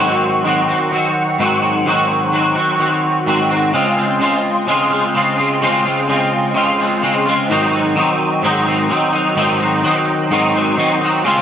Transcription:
0.00 0.71 G#2 medium
0.00 0.43 D#3 medium
0.00 0.45 F#3 medium
0.00 0.46 C4 medium
0.00 0.47 F#4 medium
0.44 0.91 D#3 medium
0.44 0.70 F#3 medium
0.44 0.69 C4 medium
0.44 0.67 F#4 medium
0.68 0.92 F#3 medium
0.68 0.93 C4 medium
0.68 0.93 F#4 medium
0.92 1.38 D#3 medium
0.92 1.39 F#3 medium
0.92 1.41 C4 medium
0.92 1.41 F#4 medium
1.39 1.84 G#2 medium
1.39 1.85 D#3 medium
1.39 1.64 F#3 medium
1.39 1.63 C4 medium
1.39 1.60 F#4 medium
1.62 1.86 F#3 soft
1.62 1.87 C4 medium
1.62 1.87 F#4 medium
1.85 2.56 G#2 medium
1.85 2.31 D#3 medium
1.85 2.32 F#3 medium
1.85 2.33 C4 medium
1.85 2.34 F#4 medium
2.32 2.78 D#3 medium
2.32 2.57 F#3 medium
2.32 2.56 C4 medium
2.32 2.54 F#4 medium
2.55 2.79 F#3 medium
2.55 2.80 C4 medium
2.55 2.81 F#4 medium
2.79 3.26 D#3 medium
2.79 3.27 F#3 medium
2.79 3.27 C4 medium
2.79 3.28 F#4 medium
3.26 3.72 G#2 medium
3.26 3.73 D#3 medium
3.26 3.51 F#3 medium
3.26 3.50 C4 medium
3.26 3.48 F#4 medium
3.49 3.74 F#3 soft
3.49 3.73 C4 medium
3.49 3.72 F#4 medium
3.73 4.19 C#3 medium
3.73 3.99 G#3 medium
3.73 3.98 C4 medium
3.73 3.96 F4 medium
3.97 4.21 G#3 medium
3.97 4.22 C4 medium
3.97 4.23 F4 medium
4.20 4.66 C#3 medium
4.20 4.68 G#3 medium
4.20 4.69 C4 medium
4.20 4.69 F4 medium
4.67 5.13 C#3 medium
4.67 4.93 G#3 medium
4.67 4.92 C4 medium
4.67 4.89 F4 medium
4.90 5.15 G#3 medium
4.90 5.16 C4 medium
4.90 5.16 F4 medium
5.14 5.60 C#3 medium
5.14 5.40 G#3 medium
5.14 5.39 C4 medium
5.14 5.37 F4 medium
5.38 5.62 G#3 medium
5.38 5.63 C4 medium
5.38 5.63 F4 medium
5.61 6.07 C#3 medium
5.61 5.88 G#3 medium
5.61 5.86 C4 loud
5.61 5.84 F4 medium
5.85 6.09 G#3 medium
5.85 6.10 C4 medium
5.85 6.10 F4 medium
6.08 6.53 C#3 medium
6.08 6.55 G#3 medium
6.08 6.56 C4 medium
6.08 6.56 F4 medium
6.54 7.01 C#3 medium
6.54 6.81 G#3 medium
6.54 6.79 C4 medium
6.54 6.77 F4 medium
6.78 7.03 G#3 medium
6.78 7.04 C4 medium
6.78 7.04 F4 medium
7.02 7.48 C#3 medium
7.02 7.28 G#3 medium
7.02 7.27 C4 medium
7.02 7.24 F4 medium
7.26 7.51 G#3 medium
7.26 7.51 C4 medium
7.26 7.48 F4 medium
7.49 8.00 G#2 medium
7.49 7.95 D#3 medium
7.49 7.75 F#3 medium
7.49 7.74 C4 loud
7.49 7.72 D#4 medium
7.72 7.97 F#3 medium
7.72 7.98 C4 medium
7.72 7.98 D#4 medium
7.96 8.42 D#3 medium
7.96 8.43 F#3 medium
7.96 8.44 C4 medium
7.96 8.44 D#4 medium
8.42 8.90 G#2 medium
8.42 8.88 D#3 medium
8.42 8.68 F#3 medium
8.42 8.67 C4 medium
8.42 8.65 D#4 loud
8.66 8.89 F#3 medium
8.66 8.91 C4 medium
8.66 8.91 D#4 medium
8.89 9.36 D#3 medium
8.89 9.14 F#3 medium
8.89 9.14 C4 medium
8.89 9.11 D#4 medium
9.13 9.36 F#3 medium
9.13 9.37 C4 medium
9.13 9.38 D#4 medium
9.36 9.83 G#2 medium
9.36 9.82 D#3 medium
9.36 9.61 F#3 medium
9.36 9.60 C4 loud
9.36 9.58 D#4 loud
9.59 9.83 F#3 medium
9.59 9.84 C4 medium
9.59 9.85 D#4 medium
9.83 10.30 D#3 medium
9.83 10.31 F#3 medium
9.83 10.32 C4 medium
9.83 10.32 D#4 medium
10.30 10.78 G#2 medium
10.30 10.76 D#3 medium
10.30 10.56 F#3 medium
10.30 10.54 C4 medium
10.30 10.52 D#4 medium
10.54 10.77 F#3 medium
10.54 10.78 C4 medium
10.54 10.79 D#4 medium
10.77 11.23 D#3 medium
10.77 11.03 F#3 medium
10.77 11.02 C4 medium
10.77 11.00 D#4 medium
11.01 11.25 F#3 medium
11.01 11.24 C4 medium
11.01 11.23 D#4 medium
11.24 11.42 C#3 loud
11.24 11.42 G#3 loud
11.24 11.42 C4 loud
11.24 11.42 F4 loud

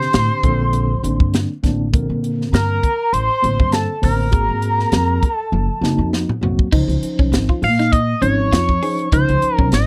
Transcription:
0.00 0.42 D3 medium
0.00 0.43 C4 medium
0.00 0.43 D4 medium
0.00 0.43 G4 medium
0.00 1.30 C5 loud
0.00 1.29 C6 medium
0.00 snare soft
0.13 0.27 A2 medium
0.13 snare loud
0.13 closed hi-hat medium
0.43 0.93 A#1 medium
0.43 0.92 D3 medium
0.43 0.92 A#3 medium
0.43 0.93 C4 medium
0.43 0.93 A4 loud
0.43 kick medium
0.43 closed hi-hat soft
0.73 closed hi-hat medium
1.03 1.17 A1 medium
1.03 1.51 D3 medium
1.03 1.51 A#3 medium
1.03 1.51 C4 medium
1.03 1.51 D4 medium
1.03 closed hi-hat medium
1.20 1.45 G2 medium
1.20 kick medium
1.34 snare medium
1.34 closed hi-hat medium
1.63 1.94 A1 medium
1.63 1.87 D3 medium
1.63 1.87 A#3 medium
1.63 1.87 C4 medium
1.63 1.87 D4 medium
1.63 kick medium
1.63 snare soft
1.63 closed hi-hat soft
1.93 2.07 A#1 medium
1.93 2.87 D3 medium
1.93 2.87 A#3 medium
1.93 2.87 C4 medium
1.93 2.87 A#4 medium
1.93 kick loud
1.93 closed hi-hat medium
2.10 2.46 A#2 medium
2.24 closed hi-hat medium
2.41 snare soft
2.53 2.78 G2 medium
2.53 3.14 A#4 medium
2.53 3.15 A#5 medium
2.53 snare loud
2.53 closed hi-hat medium
2.83 kick medium
2.83 closed hi-hat soft
3.13 3.27 A1 medium
3.13 3.75 C5 loud
3.13 3.74 C6 medium
3.13 closed hi-hat medium
3.42 3.57 A1 medium
3.42 3.91 D3 medium
3.42 3.91 A#3 medium
3.42 3.91 C4 medium
3.42 3.91 C5 medium
3.42 closed hi-hat medium
3.59 3.85 G2 medium
3.59 kick medium
3.72 4.03 A4 medium
3.72 4.02 A5 medium
3.72 snare medium
3.72 closed hi-hat medium
4.02 4.33 A1 medium
4.02 4.26 D3 medium
4.02 4.26 A#3 medium
4.02 4.26 C4 medium
4.02 5.34 A#4 medium
4.02 4.27 C5 medium
4.02 5.33 A#5 medium
4.02 kick medium
4.02 open hi-hat medium
4.31 4.47 G#1 medium
4.31 5.26 A#3 medium
4.31 5.26 C4 medium
4.31 5.26 F#4 medium
4.31 5.26 G#4 medium
4.31 kick medium
4.31 closed hi-hat medium
4.49 4.85 G#2 medium
4.62 closed hi-hat medium
4.80 snare soft
4.92 5.18 F2 medium
4.92 snare medium
4.92 closed hi-hat medium
5.23 kick medium
5.23 closed hi-hat medium
5.33 6.09 A4 medium
5.33 6.08 A5 medium
5.52 5.66 F#1 medium
5.52 high tom medium
5.81 5.96 F#1 medium
5.81 6.30 A#3 medium
5.81 6.30 C4 medium
5.81 6.31 D#4 medium
5.81 6.30 F#4 medium
5.81 snare medium
5.98 6.24 F2 medium
6.13 snare medium
6.29 mid tom medium
6.41 6.56 C2 medium
6.41 6.66 F#3 medium
6.41 6.66 A#3 medium
6.41 6.66 C4 medium
6.41 6.67 F#4 medium
6.41 floor tom medium
6.59 kick medium
6.72 6.86 C#2 medium
6.72 7.66 F3 medium
6.72 7.66 C#4 medium
6.72 6.91 D#4 medium
6.72 7.67 D#4 medium
6.72 7.67 C5 medium
6.72 kick medium
6.72 crash medium
6.88 7.00 C#2 medium
6.88 closed hi-hat soft
7.02 muted upright bass stroke soft
7.02 closed hi-hat medium
7.19 7.30 C2 medium
7.19 7.38 C#4 medium
7.19 kick medium
7.32 7.46 G#1 medium
7.32 snare loud
7.32 closed hi-hat medium
7.49 7.68 F4 medium
7.49 muted upright bass stroke soft
7.49 kick medium
7.62 8.12 A#2 medium
7.62 7.93 F5 medium
7.62 open hi-hat medium
7.79 7.98 D#4 medium
7.79 snare soft
7.79 closed hi-hat soft
7.92 8.21 D#5 medium
7.92 kick medium
7.92 closed hi-hat medium
8.21 8.47 G#1 medium
8.21 8.70 F3 medium
8.21 8.70 C#4 medium
8.21 8.41 C#4 medium
8.21 8.70 D#4 medium
8.21 9.08 C#5 loud
8.21 8.70 C#5 medium
8.21 closed hi-hat medium
8.52 8.77 F2 medium
8.52 8.71 F4 medium
8.52 snare loud
8.52 closed hi-hat medium
8.69 kick medium
8.83 9.07 F3 medium
8.83 9.07 C#4 medium
8.83 9.07 D#4 medium
8.83 9.01 G#4 medium
8.83 9.07 C5 medium
8.83 open hi-hat medium
8.99 closed hi-hat soft
9.12 9.26 C#2 medium
9.12 9.87 F3 medium
9.12 9.87 C#4 medium
9.12 9.87 D#4 medium
9.12 9.31 D#4 medium
9.12 9.56 C5 loud
9.12 9.87 C5 medium
9.12 kick medium
9.12 closed hi-hat medium
9.29 9.40 C#2 medium
9.29 closed hi-hat soft
9.42 closed hi-hat medium
9.56 9.70 C2 medium
9.56 9.77 C#4 medium
9.56 9.68 A#4 loud
9.56 kick medium
9.72 9.86 G#1 medium
9.72 9.87 D#5 loud
9.72 snare medium
9.72 closed hi-hat medium

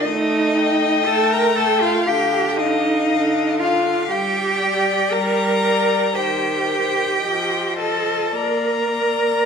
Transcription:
0.05 0.94 A3 medium
0.05 1.07 D#4 medium
0.05 1.09 D#5 medium
0.55 1.54 G5 medium
1.06 1.95 A3 medium
1.06 1.32 A4 medium
1.06 1.34 A5 medium
1.30 1.57 A#4 medium
1.30 1.60 A#5 medium
1.54 1.82 A4 medium
1.54 2.05 G5 soft
1.54 1.82 A5 medium
1.81 2.08 F4 medium
1.81 2.09 F5 medium
2.05 2.97 D3 medium
2.05 2.59 G4 medium
2.05 2.56 F5 soft
2.05 2.58 G5 medium
2.58 3.61 D#4 medium
2.58 3.58 D#5 medium
2.58 3.57 F5 soft
3.10 3.99 D3 medium
3.58 4.09 F4 medium
3.58 4.08 F5 soft
3.58 4.12 F5 soft
4.09 5.00 G3 medium
4.09 5.13 G4 medium
4.09 5.14 G5 medium
4.60 5.61 D5 soft
5.11 6.03 G3 medium
5.11 6.16 A#4 medium
5.11 6.17 A#5 medium
5.62 6.13 D5 soft
6.15 7.11 D#3 soft
6.15 7.78 G4 medium
6.15 6.67 C5 soft
6.15 7.78 G5 medium
6.68 7.22 C5 soft
7.22 8.22 F3 soft
7.22 7.77 D#5 soft
7.77 8.36 A4 medium
7.77 8.33 D#5 soft
7.77 8.37 A5 soft
8.34 9.35 A#3 soft
8.34 9.46 A#4 medium
8.34 8.91 D5 soft
8.34 9.46 A#5 medium
8.92 9.46 D5 soft

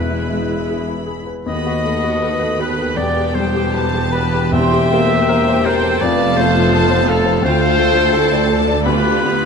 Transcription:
0.00 1.28 E1 soft
0.00 1.06 E2 medium
0.00 1.29 E2 soft
0.00 1.43 E2 soft
0.00 1.28 G#3 soft
0.00 1.17 B3 medium
0.00 1.11 E4 soft
0.00 1.26 E4 soft
0.00 1.17 G#4 soft
0.00 1.11 B4 medium
0.00 1.11 B4 soft
0.00 1.07 E5 medium
0.00 1.26 B5 soft
0.11 0.43 E4 soft
0.30 0.63 G#3 soft
0.49 0.82 E4 soft
0.69 1.02 G#4 soft
0.88 1.21 B4 soft
1.06 1.39 G#4 soft
1.26 1.47 B4 soft
1.46 2.93 D#2 medium
1.46 2.94 D#2 medium
1.46 3.00 D#2 medium
1.46 2.95 D#2 medium
1.46 1.84 B3 soft
1.46 2.94 F#4 medium
1.46 2.56 D#5 medium
1.46 2.62 D#5 medium
1.46 2.19 B5 soft
1.50 2.95 B3 medium
1.50 2.95 A4 medium
1.50 2.58 B4 medium
1.66 1.97 F#4 medium
1.84 2.15 A3 soft
1.84 2.23 B3 medium
2.04 2.34 F#4 soft
2.23 2.60 A3 medium
2.23 2.53 A4 medium
2.23 2.96 B5 medium
2.40 2.71 B4 medium
2.60 2.96 B3 medium
2.60 2.98 G4 medium
2.60 2.90 A4 medium
2.60 2.95 B4 medium
2.60 2.99 B4 medium
2.78 2.98 B4 medium
2.96 6.01 E1 medium
2.96 6.03 E1 medium
2.96 4.48 E2 medium
2.96 6.02 E2 medium
2.96 4.49 B3 medium
2.96 4.50 B3 medium
2.96 4.49 G4 medium
2.96 4.54 G4 medium
2.96 3.36 B4 medium
2.96 3.36 D5 medium
2.96 3.37 D5 medium
2.96 3.73 G5 medium
2.96 3.69 G5 medium
3.17 3.47 G4 medium
3.34 3.65 G3 medium
3.34 4.13 A4 medium
3.34 4.13 C5 medium
3.56 3.85 G4 medium
3.72 4.05 B4 medium
3.72 4.53 A5 medium
3.72 4.13 A5 medium
3.94 4.26 G4 medium
4.11 4.53 G4 medium
4.11 4.51 B4 medium
4.11 4.52 B4 medium
4.11 4.45 B4 medium
4.11 4.53 B5 medium
4.34 4.54 G4 medium
4.51 5.62 E2 medium
4.51 5.99 E2 medium
4.51 6.00 A#3 medium
4.51 4.90 C4 medium
4.51 5.27 G4 medium
4.51 6.00 G4 medium
4.51 5.63 C5 medium
4.51 5.68 E5 loud
4.51 5.66 E5 medium
4.51 5.27 G5 medium
4.51 4.91 C6 medium
4.72 5.03 G4 medium
4.90 5.28 A3 medium
4.90 5.22 A#3 medium
4.90 6.00 G5 medium
5.10 5.40 G4 medium
5.28 5.66 A#3 medium
5.28 6.01 G4 medium
5.28 5.59 A#4 medium
5.28 6.01 G5 medium
5.48 5.77 C5 medium
5.65 6.02 C4 medium
5.65 6.03 A4 medium
5.65 5.95 A#4 medium
5.65 6.03 C5 loud
5.65 6.04 C5 medium
5.83 6.02 C5 medium
6.01 7.46 F1 medium
6.01 7.42 F1 medium
6.01 7.40 F2 medium
6.01 7.42 F2 medium
6.01 7.43 A3 medium
6.01 7.45 B3 medium
6.01 7.42 F4 medium
6.01 7.43 F4 medium
6.01 6.39 B4 medium
6.01 6.38 D5 medium
6.01 6.42 D5 loud
6.01 6.73 F5 medium
6.01 6.72 A5 medium
6.18 6.48 F4 medium
6.36 6.66 A3 medium
6.36 7.10 A4 medium
6.36 7.10 C5 loud
6.40 7.12 C5 loud
6.54 6.84 F4 medium
6.73 7.02 A4 medium
6.73 7.08 A5 medium
6.73 7.43 A5 medium
6.90 7.19 C5 medium
7.07 7.45 F4 medium
7.07 7.37 A4 medium
7.07 7.44 A4 medium
7.07 7.45 A4 medium
7.07 7.42 F5 medium
7.25 7.44 C5 medium
7.42 8.81 D2 medium
7.42 9.45 D2 medium
7.42 8.13 A3 medium
7.42 8.82 A3 medium
7.42 8.13 F4 medium
7.42 8.82 F4 medium
7.42 8.87 A4 loud
7.42 8.57 C5 loud
7.42 7.78 F5 medium
7.42 7.80 G5 medium
7.59 7.89 F4 medium
7.78 8.07 A3 medium
7.78 8.14 F5 medium
7.78 8.15 G5 medium
7.96 8.25 F4 medium
8.13 8.85 A3 medium
8.13 8.50 E4 medium
8.13 8.42 A4 medium
8.13 8.50 G5 medium
8.13 8.86 A5 medium
8.32 8.61 D5 medium
8.49 8.85 D4 medium
8.49 8.78 A4 medium
8.49 8.86 A5 medium
8.67 8.86 D5 medium
8.85 9.45 D2 medium
8.85 9.45 B3 medium
8.85 9.24 D4 medium
8.85 9.45 F4 medium
8.85 9.45 G4 medium
8.85 9.45 B4 medium
8.85 9.34 B5 medium
8.85 9.45 B5 medium
9.05 9.35 F4 medium
9.23 9.45 B3 medium

